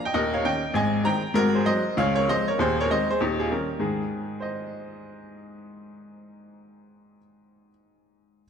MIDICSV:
0, 0, Header, 1, 2, 480
1, 0, Start_track
1, 0, Key_signature, -4, "major"
1, 0, Tempo, 303951
1, 231, Time_signature, 4, 2, 24, 8
1, 13422, End_track
2, 0, Start_track
2, 0, Title_t, "Upright piano"
2, 0, Program_c, 0, 0
2, 85, Note_on_c, 0, 79, 94
2, 97, Note_on_c, 0, 75, 69
2, 198, Note_off_c, 0, 75, 0
2, 218, Note_on_c, 0, 27, 66
2, 222, Note_on_c, 0, 39, 94
2, 222, Note_on_c, 0, 75, 97
2, 245, Note_off_c, 0, 79, 0
2, 253, Note_on_c, 0, 70, 80
2, 494, Control_c, 0, 64, 127
2, 527, Note_off_c, 0, 70, 0
2, 529, Note_on_c, 0, 77, 91
2, 532, Note_off_c, 0, 75, 0
2, 544, Note_on_c, 0, 73, 79
2, 632, Note_off_c, 0, 27, 0
2, 634, Note_off_c, 0, 39, 0
2, 690, Note_on_c, 0, 51, 55
2, 695, Note_on_c, 0, 58, 54
2, 702, Note_off_c, 0, 73, 0
2, 707, Note_off_c, 0, 77, 0
2, 710, Note_on_c, 0, 61, 59
2, 713, Note_on_c, 0, 79, 102
2, 727, Control_c, 0, 64, 0
2, 732, Note_on_c, 0, 75, 73
2, 960, Note_off_c, 0, 51, 0
2, 963, Note_off_c, 0, 58, 0
2, 974, Note_off_c, 0, 61, 0
2, 1162, Note_on_c, 0, 32, 86
2, 1169, Note_off_c, 0, 75, 0
2, 1172, Note_on_c, 0, 44, 90
2, 1188, Note_on_c, 0, 80, 109
2, 1192, Note_off_c, 0, 79, 0
2, 1203, Note_on_c, 0, 75, 81
2, 1453, Control_c, 0, 64, 127
2, 1582, Note_off_c, 0, 32, 0
2, 1588, Note_off_c, 0, 44, 0
2, 1639, Note_on_c, 0, 51, 60
2, 1643, Note_off_c, 0, 75, 0
2, 1648, Note_on_c, 0, 56, 53
2, 1649, Note_on_c, 0, 60, 58
2, 1656, Note_on_c, 0, 82, 110
2, 1669, Note_off_c, 0, 80, 0
2, 1678, Note_on_c, 0, 79, 85
2, 1686, Control_c, 0, 64, 0
2, 1911, Note_off_c, 0, 51, 0
2, 1918, Note_off_c, 0, 56, 0
2, 1919, Note_off_c, 0, 60, 0
2, 2119, Note_on_c, 0, 44, 97
2, 2121, Note_off_c, 0, 79, 0
2, 2134, Note_on_c, 0, 32, 82
2, 2138, Note_on_c, 0, 70, 127
2, 2143, Note_off_c, 0, 82, 0
2, 2158, Note_on_c, 0, 66, 83
2, 2399, Control_c, 0, 64, 127
2, 2439, Note_off_c, 0, 66, 0
2, 2450, Note_off_c, 0, 70, 0
2, 2451, Note_on_c, 0, 72, 85
2, 2465, Note_on_c, 0, 68, 68
2, 2540, Note_off_c, 0, 44, 0
2, 2549, Note_off_c, 0, 32, 0
2, 2607, Note_on_c, 0, 54, 67
2, 2611, Note_on_c, 0, 56, 55
2, 2616, Note_off_c, 0, 72, 0
2, 2616, Note_on_c, 0, 60, 66
2, 2621, Note_on_c, 0, 75, 105
2, 2623, Note_off_c, 0, 68, 0
2, 2639, Note_on_c, 0, 72, 81
2, 2655, Control_c, 0, 64, 0
2, 2878, Note_off_c, 0, 54, 0
2, 2880, Note_off_c, 0, 56, 0
2, 2884, Note_off_c, 0, 60, 0
2, 3082, Note_off_c, 0, 72, 0
2, 3106, Note_off_c, 0, 75, 0
2, 3111, Note_on_c, 0, 49, 93
2, 3115, Note_on_c, 0, 37, 99
2, 3125, Note_on_c, 0, 77, 119
2, 3154, Note_on_c, 0, 73, 90
2, 3368, Control_c, 0, 64, 127
2, 3379, Note_off_c, 0, 73, 0
2, 3403, Note_on_c, 0, 73, 105
2, 3424, Note_off_c, 0, 77, 0
2, 3428, Note_on_c, 0, 70, 73
2, 3519, Note_off_c, 0, 49, 0
2, 3521, Note_off_c, 0, 37, 0
2, 3584, Note_off_c, 0, 70, 0
2, 3584, Note_off_c, 0, 73, 0
2, 3609, Control_c, 0, 64, 0
2, 3613, Note_on_c, 0, 53, 56
2, 3614, Note_on_c, 0, 56, 63
2, 3622, Note_on_c, 0, 60, 60
2, 3622, Note_on_c, 0, 75, 113
2, 3634, Note_on_c, 0, 72, 88
2, 3871, Note_off_c, 0, 53, 0
2, 3872, Note_off_c, 0, 56, 0
2, 3877, Note_off_c, 0, 60, 0
2, 3898, Note_off_c, 0, 72, 0
2, 3912, Note_off_c, 0, 75, 0
2, 3914, Note_on_c, 0, 73, 94
2, 3952, Note_on_c, 0, 70, 72
2, 4079, Note_off_c, 0, 73, 0
2, 4081, Note_on_c, 0, 27, 89
2, 4088, Note_off_c, 0, 70, 0
2, 4091, Note_on_c, 0, 39, 92
2, 4111, Note_on_c, 0, 72, 107
2, 4126, Note_on_c, 0, 68, 82
2, 4336, Control_c, 0, 64, 127
2, 4384, Note_off_c, 0, 68, 0
2, 4397, Note_off_c, 0, 72, 0
2, 4430, Note_on_c, 0, 73, 106
2, 4448, Note_on_c, 0, 70, 88
2, 4484, Note_off_c, 0, 27, 0
2, 4490, Note_off_c, 0, 39, 0
2, 4565, Control_c, 0, 64, 0
2, 4576, Note_off_c, 0, 70, 0
2, 4577, Note_off_c, 0, 73, 0
2, 4586, Note_on_c, 0, 51, 60
2, 4591, Note_on_c, 0, 60, 65
2, 4594, Note_on_c, 0, 56, 56
2, 4595, Note_on_c, 0, 75, 105
2, 4616, Note_on_c, 0, 72, 77
2, 4841, Note_off_c, 0, 51, 0
2, 4844, Note_off_c, 0, 60, 0
2, 4846, Note_off_c, 0, 56, 0
2, 4870, Note_off_c, 0, 72, 0
2, 4879, Note_off_c, 0, 75, 0
2, 4903, Note_on_c, 0, 72, 99
2, 4916, Note_on_c, 0, 68, 64
2, 5050, Note_off_c, 0, 68, 0
2, 5054, Note_off_c, 0, 72, 0
2, 5061, Note_on_c, 0, 39, 85
2, 5066, Note_on_c, 0, 27, 77
2, 5079, Note_on_c, 0, 67, 90
2, 5095, Note_on_c, 0, 63, 68
2, 5297, Control_c, 0, 64, 127
2, 5350, Note_off_c, 0, 63, 0
2, 5361, Note_off_c, 0, 67, 0
2, 5363, Note_on_c, 0, 68, 82
2, 5381, Note_on_c, 0, 65, 68
2, 5456, Note_off_c, 0, 39, 0
2, 5459, Note_off_c, 0, 27, 0
2, 5522, Note_off_c, 0, 65, 0
2, 5524, Note_off_c, 0, 68, 0
2, 5524, Control_c, 0, 64, 0
2, 5543, Note_on_c, 0, 51, 45
2, 5555, Note_on_c, 0, 55, 54
2, 5557, Note_on_c, 0, 70, 82
2, 5563, Note_on_c, 0, 61, 56
2, 5580, Note_on_c, 0, 67, 56
2, 5798, Note_off_c, 0, 51, 0
2, 5807, Note_off_c, 0, 55, 0
2, 5812, Note_off_c, 0, 61, 0
2, 5994, Note_off_c, 0, 67, 0
2, 5994, Note_on_c, 0, 44, 67
2, 5995, Note_on_c, 0, 51, 67
2, 6009, Note_on_c, 0, 68, 66
2, 6014, Note_off_c, 0, 70, 0
2, 6297, Control_c, 0, 64, 127
2, 6953, Note_on_c, 0, 72, 57
2, 6982, Note_on_c, 0, 75, 58
2, 11315, Note_off_c, 0, 44, 0
2, 11315, Note_off_c, 0, 51, 0
2, 11329, Note_off_c, 0, 68, 0
2, 12139, Note_off_c, 0, 72, 0
2, 12154, Note_off_c, 0, 75, 0
2, 13333, Control_c, 0, 64, 0
2, 13422, End_track
0, 0, End_of_file